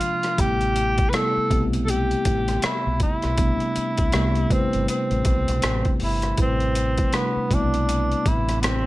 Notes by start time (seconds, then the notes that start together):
Already playing: C3 F3 G#3 A#3 D4 F4
0.01 closed hi-hat
0.23 cross-stick, closed hi-hat
0.37 A1 C3 G3 A3 B3 E4 G4, kick, closed hi-hat
0.61 closed hi-hat
0.76 closed hi-hat
0.98 kick, closed hi-hat
1.10 C3 G3 A3 B4, closed hi-hat
1.14 B3 E4 A4, cross-stick
1.37 muted fingered electric bass stroke
1.50 B1 G3 A3 B3 C4 G4, kick, closed hi-hat
1.73 closed hi-hat
1.85 A4, closed hi-hat
1.90 G4
2.11 closed hi-hat
2.25 A1, kick, closed hi-hat
2.48 cross-stick, closed hi-hat
2.62 E4, muted fingered electric bass stroke, cross-stick, closed hi-hat
2.87 B1
3.00 E4, kick, closed hi-hat
3.22 B1, cross-stick, closed hi-hat
3.37 C3 G3 A3 B3 D4, kick, closed hi-hat
3.60 closed hi-hat
3.76 muted fingered electric bass stroke, closed hi-hat
3.98 C2, kick, closed hi-hat
4.12 C2 C3 G3 A3 B3 G4, cross-stick, closed hi-hat
4.35 closed hi-hat
4.50 C3 G3 A3 C4 E4 B4, kick, closed hi-hat
4.73 G1, closed hi-hat
4.88 C4, closed hi-hat
5.11 A1, closed hi-hat
5.25 B1, kick, closed hi-hat
5.48 B1, closed hi-hat
5.62 A1, cross-stick, closed hi-hat
5.85 kick, closed hi-hat
6.00 G1 E4, open hi-hat
6.22 cross-stick, closed hi-hat
6.37 A1 B2 G3 A3 C4 E4 B4, kick, closed hi-hat
6.44 C3
6.60 closed hi-hat
6.75 closed hi-hat
6.98 kick, closed hi-hat
7.13 C3 G3 A3 B3 D4, cross-stick, closed hi-hat
7.37 muted fingered electric bass stroke
7.50 B1 G3 A3 B3 C4 D4 E4, kick, closed hi-hat
7.74 closed hi-hat
7.89 closed hi-hat
8.12 closed hi-hat
8.26 A1 E4, kick, closed hi-hat
8.49 cross-stick, closed hi-hat
8.61 B3, cross-stick, closed hi-hat
8.66 C4